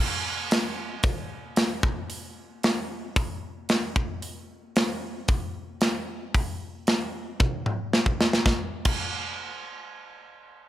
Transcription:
0.51 snare, open hi-hat
1.03 kick, open hi-hat
1.56 snare, open hi-hat
1.83 kick
2.10 open hi-hat
2.63 snare, open hi-hat
3.16 kick, open hi-hat
3.69 snare, open hi-hat
3.96 kick
4.22 open hi-hat
4.76 snare, open hi-hat
5.28 kick, open hi-hat
5.81 snare, open hi-hat
6.34 kick, open hi-hat
6.87 snare, open hi-hat
7.40 kick, high tom
7.66 mid tom
7.93 snare
8.06 kick
8.21 snare
8.33 snare
8.46 kick, snare
8.85 kick, crash

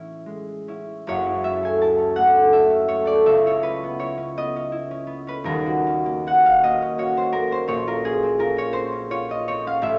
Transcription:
Already playing: A2 E3 A3 C#4 E4 A4
0.26 G#3
0.68 C#4 E4
1.07 F#1 F#2 C#5
1.27 E4
1.44 C#4 E5
1.63 A4 G#5
1.82 E4 A5
1.98 C#4
2.16 A3 F#5
2.35 A4
2.53 E4 E5
2.70 C#4
2.88 A3 C#5
3.05 A4 D5
3.26 C#2 E5
3.46 E4 C#5
3.63 C#4 B4
3.84 B3
3.99 E4 C#5
4.18 C#4
4.37 B3 D#5
4.56 C#4
4.72 E4
4.91 C#4
5.07 B3
5.27 C#4 B4
5.44 D#1 D#2 A#4
5.66 F#4
5.87 C#4
6.06 A#3
6.27 F#4 F#5
6.45 C#4 F5
6.63 A#3 D#5
6.82 C#4
6.98 F#4 C#5
7.17 C#4 C5
7.33 A#3 A#4
7.51 C#4 C5
7.68 A#1 C#5
7.87 F4 A#4
8.04 C#4 G#4
8.23 C4
8.39 F4 A#4
8.57 C#4 C#5
8.73 C4 C5
8.92 C#4
9.11 F4 C#5
9.29 C#4 D#5
9.48 C4 C#5
9.67 C#4 F5
9.82 A1 E5

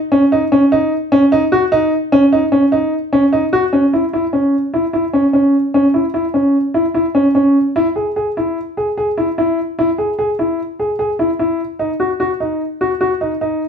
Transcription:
0.12 C#4
0.32 D#4
0.52 C#4
0.72 D#4
1.12 C#4
1.32 D#4
1.52 F#4
1.72 D#4
2.12 C#4
2.33 D#4
2.52 C#4
2.72 D#4
3.13 C#4
3.33 D#4
3.53 F#4
3.73 C#4
3.93 E4
4.13 E4
4.33 C#4
4.74 E4
4.93 E4
5.13 C#4
5.33 C#4
5.74 C#4
5.94 E4
6.14 E4
6.34 C#4
6.74 E4
6.94 E4
7.15 C#4
7.35 C#4
7.76 E4
7.96 G#4
8.16 G#4
8.37 E4
8.77 G#4
8.97 G#4
9.17 E4
9.38 E4
9.79 E4
9.98 G#4
10.19 G#4
10.39 E4
10.80 G#4
10.99 G#4
11.19 E4
11.39 E4
11.79 D#4
12.00 F#4
12.20 F#4
12.40 D#4
12.81 F#4
13.01 F#4
13.21 D#4
13.41 D#4

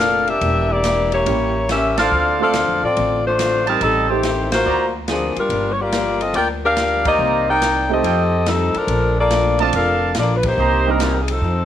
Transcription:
Already playing: F1 D4 A4 A#4 F5
0.00 A#2 F3 A3 D4, snare
0.27 D4 G4 A#4 E5, ride
0.41 E1 E3 A#3 D4 G4, ride
0.70 A#3 E4 G4 D5
0.84 E3 A#3 D4 G4, snare, hi-hat pedal, ride
1.12 A#3 E4 G4 C#5, ride
1.26 A1 A2 G3 A#3 C#4 E4 G4, ride
1.69 A2 G3 A#3 C#4 G4 A#4 E5, snare, hi-hat pedal, ride
1.97 D4 F4 A4 C5 D5 F5 A5, snare, ride
2.11 D2 D3 A3 C4 F4
2.39 A3 C4 D4 F4 A4 C5 F5
2.54 D3 A3 C4 F4, snare, hi-hat pedal, ride
2.69 F2
2.82 A2 C4 F4 A4 D5
2.97 A1 D3 A3 C4 F4, ride
3.26 A3 D4 F4 C5
3.39 D3 A3 C4 F4, snare, hi-hat pedal, ride
3.67 G3 C4 D#4 G4 A#4 C5 D#5 A5, ride
3.81 A1 A2 G3 C4 D#4 A4, ride
4.09 D#3 A3 C4 D#4 G4
4.23 A2 G3 C4 D#4, snare, hi-hat pedal, ride
4.52 A#3 F4 F#4 C5, snare, ride
4.65 D2 D3 A#3 C4 F#4 C5 D5 A#5
5.08 D3 F3 A#3 C4 D4 F#4 G#4, snare, hi-hat pedal, ride
5.36 G3 D4 F4 A#4, muted upright bass stroke, ride
5.49 G1 G2 F3 A#3 D4, ride
5.72 C#5
5.81 A#3 F4 G4 D5
5.92 G2 F3 A#3 D4, snare, hi-hat pedal, ride
6.21 C4 F4 A4 D#5, ride
6.33 D2 G2 F3 A#3 D4 F4 A#4 D5 G5, ride
6.65 D4 G4 A#4 F5
6.76 G2 F3 A#3 D4, snare, hi-hat pedal, ride
7.05 A#3 D#4 G4 C5 D5 D#5 F5 A#5, kick, ride
7.18 C2 C3 D#3 A#3 D4
7.49 D#4 A#4 D5 G5
7.62 C3 D#3 A#3 D4, snare, hi-hat pedal, ride
7.89 A3 C4 D#4 G4 A4
7.93 C4 D#5
8.03 F2 F3 A3 D#4 F4 G4 A4 D#5 G5, ride
8.46 F3 G3 A3 C4 D#4 G4 A4, snare, hi-hat pedal, ride
8.74 F3 D4 A4 A#4, muted upright bass stroke, ride
8.87 A#1 A#2 F3 A3 D4, ride
9.20 A#3 F4 A4 D5
9.31 A#2 F3 A3 D4, snare, hi-hat pedal, ride
9.59 A3 C4 D4 F4 A4 D5 D#5 A5, ride
9.73 F1 A#2 F3 A3 D4 A4 A#4 F5, ride
10.15 A#1 A#2 F3 A3 D4, snare, hi-hat pedal, ride
10.19 A#3 F4 A4 D5
10.36 B4
10.43 A#3 G4, kick, ride
10.47 D#4 C5
10.58 C2 C3 G3 A#3 D#4 G4 C5 D#5 A#5
10.87 G3 A#3 C4 D4 D#4 A#4
10.99 C3 G3 A#3 D#4, snare, hi-hat pedal, ride
11.20 G#4
11.28 F3, ride
11.32 C4 D#4 A4
11.41 F2 D#3 A3
11.46 C4

